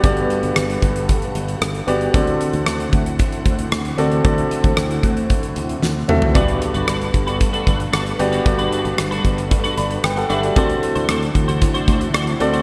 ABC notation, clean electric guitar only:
X:1
M:4/4
L:1/16
Q:1/4=114
K:G
V:1 name="Clean electric guitar"
z16 | z16 | z16 | [DFB] z2 [DFB] [DFB] z2 [DFB] z [DFB] [DFB] z [DFB] z2 [DFB] |
z [DFB] [DFB] z2 [DFB] z3 [DFB] z4 [DFB] z | [DFc] z2 [DFc] [DFc] z2 [DFc] z [DFc] [DFc] z [DFc] z2 [DFc] |]